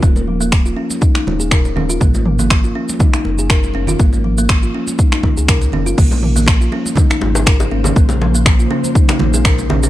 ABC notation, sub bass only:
X:1
M:4/4
L:1/16
Q:"Swing 16ths" 1/4=121
K:Bbm
V:1 name="Sub bass" clef=bass
E,,,6 z4 E,,,6 | A,,,6 z4 G,,,4 G,,,2 | A,,,6 z4 z D,,3 G,,,2 | B,,,6 z4 A,,,4 A,,,2 |
B,,,6 z4 B,,,6 |]